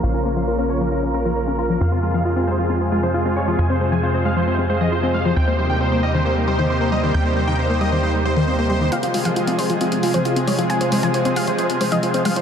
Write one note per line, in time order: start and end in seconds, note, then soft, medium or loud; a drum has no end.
0.00 1.79 A#1 medium
0.00 1.77 C#3 medium
0.00 5.32 F3 medium
0.00 1.77 A#3 medium
0.00 1.77 F4 medium
0.00 0.09 F4 medium
0.00 1.77 A#4 medium
0.00 0.12 F5 medium
0.14 0.20 C#4 medium
0.14 0.23 A#4 medium
0.25 0.32 A#3 medium
0.25 0.34 A#4 medium
0.36 0.43 F3 medium
0.36 0.45 F5 medium
0.47 0.54 F4 medium
0.47 0.56 A#4 medium
0.59 0.68 C#4 loud
0.59 0.67 A#4 medium
0.70 0.73 A#3 loud
0.70 0.78 C#5 medium
0.81 0.87 F3 medium
0.81 0.89 A#4 medium
0.92 0.96 F4 medium
0.92 1.01 A#4 medium
1.03 1.09 C#4 medium
1.14 1.24 C#4 medium
1.14 1.23 A#4 medium
1.25 1.32 F3 medium
1.25 1.34 A#4 medium
1.36 1.45 A#4 medium
1.36 1.43 C#5 medium
1.47 1.51 C#4 medium
1.47 1.56 A#4 medium
1.58 1.68 F4 loud
1.58 1.67 A#4 medium
1.70 1.76 F3 medium
1.70 1.78 A#4 medium
1.81 3.56 F2 medium
1.81 8.88 C3 medium
1.81 5.33 G#3 medium
1.81 1.87 F4 medium
1.81 5.33 F4 medium
1.81 5.33 G#4 medium
1.81 1.89 F5 medium
1.92 1.98 C4 medium
1.92 2.00 F4 medium
2.03 2.09 G#3 medium
2.03 2.12 F4 medium
2.14 2.20 F3 loud
2.14 2.23 F5 medium
2.25 2.31 F4 medium
2.25 2.34 F4 medium
2.36 2.46 C4 loud
2.36 2.45 F4 medium
2.47 2.51 G#3 medium
2.47 2.56 C5 medium
2.59 2.65 F3 medium
2.59 2.67 F4 medium
2.70 2.79 C4 medium
2.70 2.78 F4 medium
2.81 2.87 C4 medium
2.92 2.98 G#3 medium
2.92 3.00 F4 medium
3.03 3.09 F3 loud
3.03 3.12 C5 medium
3.14 3.20 F4 medium
3.14 3.23 F4 medium
3.25 3.35 C4 loud
3.25 3.34 F4 medium
3.36 3.40 G#3 loud
3.36 3.45 C#5 medium
3.47 3.54 F3 loud
3.47 3.56 F4 medium
3.59 5.34 F2 medium
3.59 3.65 F4 medium
3.59 3.67 G#5 medium
3.70 3.76 C4 medium
3.70 3.78 C5 medium
3.81 3.87 G#3 medium
3.81 3.89 C5 medium
3.92 3.98 F3 loud
3.92 4.00 G#5 medium
4.03 4.09 F4 medium
4.03 4.12 C5 medium
4.14 4.24 C4 loud
4.14 4.23 C5 medium
4.25 4.29 G#3 loud
4.25 4.34 F5 medium
4.36 4.43 F3 medium
4.36 4.45 C5 medium
4.48 4.57 C4 medium
4.48 4.56 C5 medium
4.59 4.65 C4 medium
4.70 4.76 G#3 medium
4.70 4.78 C5 medium
4.81 4.87 F3 loud
4.81 4.89 D#5 medium
4.92 4.98 F4 medium
4.92 5.00 C5 medium
5.03 5.12 C4 loud
5.03 5.12 C5 medium
5.14 5.18 G#3 loud
5.14 5.23 F5 medium
5.25 5.32 F3 loud
5.25 5.34 C5 medium
5.36 7.12 D#2 medium
5.36 8.88 G3 medium
5.36 8.88 A#3 medium
5.36 5.43 C4 medium
5.36 8.88 D#4 medium
5.36 8.88 G4 medium
5.36 5.45 G5 medium
5.47 5.54 A#3 medium
5.47 5.56 C5 medium
5.59 5.65 G3 medium
5.59 5.67 C5 medium
5.70 5.76 D#3 loud
5.70 5.78 G5 medium
5.81 5.87 C4 medium
5.81 5.89 C5 medium
5.92 6.01 A#3 loud
5.92 6.00 C5 medium
6.03 6.07 G3 loud
6.03 6.12 D#5 medium
6.14 6.20 D#3 medium
6.14 6.23 C5 medium
6.25 6.35 A#3 medium
6.25 6.34 C5 medium
6.36 6.43 A#3 medium
6.48 6.54 G3 medium
6.48 6.56 C5 medium
6.59 6.65 D#3 loud
6.59 6.67 C5 medium
6.70 6.76 C4 medium
6.70 6.78 C5 medium
6.81 6.90 A#3 loud
6.81 6.89 C5 medium
6.92 6.96 G3 loud
6.92 7.00 D#5 medium
7.03 7.09 D#3 loud
7.03 7.12 C5 medium
7.14 8.90 D#2 medium
7.14 7.20 C4 medium
7.14 7.23 G5 medium
7.25 7.32 A#3 medium
7.25 7.34 C5 medium
7.36 7.43 G3 medium
7.36 7.45 C5 medium
7.47 7.54 D#3 loud
7.47 7.56 G5 medium
7.59 7.65 C4 medium
7.59 7.67 C5 medium
7.70 7.79 A#3 medium
7.70 7.78 C5 medium
7.81 7.85 G3 medium
7.81 7.89 D#5 medium
7.92 7.98 D#3 medium
7.92 8.01 C5 medium
8.03 8.12 A#3 medium
8.03 8.12 C5 medium
8.14 8.20 A#3 medium
8.25 8.32 G3 medium
8.25 8.34 C5 medium
8.36 8.43 D#3 loud
8.36 8.45 C5 medium
8.48 8.54 C4 medium
8.48 8.56 C5 medium
8.59 8.68 A#3 loud
8.59 8.67 C5 medium
8.70 8.74 G3 loud
8.70 8.78 C5 medium
8.81 8.87 D#3 loud
8.81 8.89 C5 medium
8.92 12.41 C3 medium
8.92 12.41 F3 medium
8.92 12.41 G#3 medium
8.92 12.41 F4 medium
8.92 8.98 F4 medium
8.92 12.41 G#4 medium
8.92 9.00 F5 medium
8.92 closed hi-hat medium
9.03 9.09 C4 medium
9.03 9.12 F4 medium
9.03 closed hi-hat medium
9.14 9.20 G#3 medium
9.14 9.23 F4 medium
9.14 open hi-hat loud
9.25 9.32 F3 loud
9.25 9.34 F5 medium
9.25 closed hi-hat medium
9.36 9.45 F4 medium
9.36 9.43 F4 medium
9.36 9.45 F4 medium
9.36 closed hi-hat medium
9.47 9.57 C4 loud
9.47 9.56 F4 medium
9.47 closed hi-hat medium
9.58 9.62 G#3 medium
9.58 9.67 C5 medium
9.58 open hi-hat medium
9.70 9.76 F3 medium
9.70 9.78 F4 medium
9.70 closed hi-hat medium
9.81 9.90 C4 medium
9.81 9.89 F4 medium
9.81 closed hi-hat medium
9.92 9.98 C4 medium
9.92 closed hi-hat medium
10.03 10.09 G#3 medium
10.03 10.12 F4 medium
10.03 open hi-hat loud
10.14 10.20 F3 loud
10.14 10.23 C5 medium
10.14 closed hi-hat medium
10.25 10.34 F4 medium
10.25 10.32 F4 medium
10.25 10.34 F4 medium
10.25 closed hi-hat medium
10.36 10.46 C4 loud
10.36 10.45 F4 medium
10.36 closed hi-hat medium
10.47 10.51 G#3 loud
10.47 10.56 C#5 medium
10.47 open hi-hat medium
10.58 10.65 F3 loud
10.58 10.67 F4 medium
10.58 closed hi-hat medium
10.70 10.76 F4 medium
10.70 10.78 G#5 loud
10.70 closed hi-hat medium
10.81 10.87 C4 medium
10.81 10.89 C5 medium
10.81 closed hi-hat medium
10.92 10.98 G#3 medium
10.92 11.01 C5 medium
10.92 open hi-hat loud
11.03 11.09 F3 loud
11.03 11.12 G#5 medium
11.03 closed hi-hat medium
11.14 11.20 F4 medium
11.14 11.23 C5 medium
11.14 closed hi-hat medium
11.25 11.35 C4 loud
11.25 11.34 C5 medium
11.25 closed hi-hat medium
11.36 11.40 G#3 loud
11.36 11.45 F5 medium
11.36 open hi-hat medium
11.47 11.54 F3 medium
11.47 11.56 C5 medium
11.47 closed hi-hat medium
11.59 11.68 C4 medium
11.59 11.67 C5 medium
11.59 closed hi-hat medium
11.70 11.76 C4 medium
11.70 closed hi-hat medium
11.81 11.87 G#3 medium
11.81 11.89 C5 medium
11.81 open hi-hat loud
11.92 11.98 F3 loud
11.92 12.00 D#5 medium
11.92 12.01 D#5 medium
11.92 closed hi-hat medium
12.03 12.09 F4 medium
12.03 12.12 C5 medium
12.03 closed hi-hat medium
12.14 12.24 C4 loud
12.14 12.23 C5 medium
12.14 closed hi-hat medium
12.25 12.29 G#3 loud
12.25 12.34 F5 medium
12.25 open hi-hat medium
12.36 12.41 F3 loud
12.36 12.41 C5 medium
12.36 closed hi-hat medium